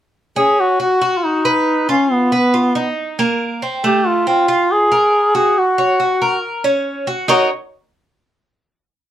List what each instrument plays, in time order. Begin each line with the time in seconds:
0.36 cuban tres C#4, duduk G#4
0.60 duduk F#4
0.80 cuban tres F#4, duduk F#4
1.02 cuban tres F#4
1.18 duduk F4
1.25 duduk D#4
1.45 cuban tres B4
1.89 duduk C#4, cuban tres F4
2.12 duduk B3
2.32 cuban tres B4
2.54 cuban tres F4
2.75 cuban tres D#4
3.19 cuban tres A#3
3.62 cuban tres C4
3.84 cuban tres A3, duduk G4
4.07 duduk F4
4.27 cuban tres C4, duduk F4
4.48 cuban tres F4
4.72 duduk G#4
4.92 cuban tres A#4
5.35 cuban tres F#4, duduk G#4
5.59 duduk F#4
5.78 cuban tres C#5
6.00 cuban tres F#4
6.22 cuban tres A#4
6.64 cuban tres C#4
7.07 cuban tres F#4
7.28 cuban tres D#4 A#4 C#5, duduk F#4